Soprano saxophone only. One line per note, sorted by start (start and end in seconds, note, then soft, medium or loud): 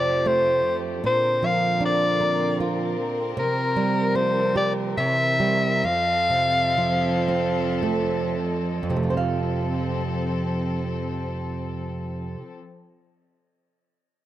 0.00 0.29 D5 medium
0.28 0.79 C5 medium
1.07 1.47 C5 medium
1.46 1.84 F5 medium
1.86 2.59 D5 medium
3.39 4.18 A#4 medium
4.16 4.57 C5 medium
4.57 4.73 D5 medium
4.98 5.86 E5 medium
5.85 7.82 F5 loud